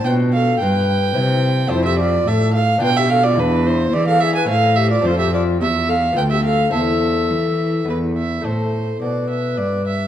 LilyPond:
<<
  \new Staff \with { instrumentName = "Violin" } { \time 3/4 \key a \minor \tempo 4 = 107 g''8 f''8 g''2 | c''16 e''16 d''8 e''8 f''8 g''16 e''16 f''16 d''16 | b'8 c''8 d''16 f''16 e''16 gis''16 f''8 e''16 d''16 | c''16 e''16 d''8 e''8 f''8 g''16 e''16 f''8 |
e''2 b'8 e''8 | c''4 d''8 e''8 d''8 e''8 | }
  \new Staff \with { instrumentName = "Flute" } { \time 3/4 \key a \minor b'8 a'8 b'4. r8 | e'16 g'16 f'8 a'8 a'8 b'16 g'16 a'16 f'16 | d'8 e'8 gis'16 a'16 gis'16 b'16 a'8 g'16 f'16 | f'16 g'16 f'8 g'8 a'8 b'16 g'16 a'8 |
a'2~ a'8 r8 | r4 b'2 | }
  \new Staff \with { instrumentName = "Lute" } { \time 3/4 \key a \minor <d' f'>2 <c' e'>4 | <a c' f'>2 <b d' f'>4 | <gis d' e'>2 <a c' e'>4 | <a c' f'>2 <b f'>4 |
<c' e' a'>2 <b e' gis'>4 | <a e' a'>2. | }
  \new Staff \with { instrumentName = "Lute" } { \clef bass \time 3/4 \key a \minor b,4 g,4 c4 | f,4 a,4 b,4 | e,4 e4 a,4 | f,4 e,4 d,4 |
e,4 e4 e,4 | a,4 b,4 g,4 | }
  \new Staff \with { instrumentName = "Cello" } { \clef bass \time 3/4 \key a \minor b,4 g,4 c4 | f,4 a,4 b,4 | e,4 e4 a,4 | f,4 e,4 d,4 |
e,4 e4 e,4 | a,4 b,4 g,4 | }
>>